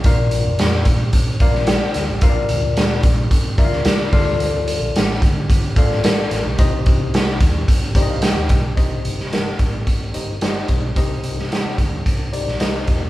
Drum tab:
HH |x-x-x-x-x-x-x-x-|x-x-x-x-x-x-x-o-|x-x-x-x-x-x-x-x-|x-x-x-x-x-x-x-x-|
SD |----o------oo-o-|----o------oo-o-|----o------oo-o-|----o-------o-o-|
BD |o-----o-o-o-----|o-----o-o-o---o-|------o-o-o-----|o-o---o-o-o---o-|

HH |x-x-x-x-x-x-x-x-|x-x-x-x-x-x-x-x-|
SD |---oo-------o---|---oo------oo-o-|
BD |o-----o-o-----o-|o-----o-o-----o-|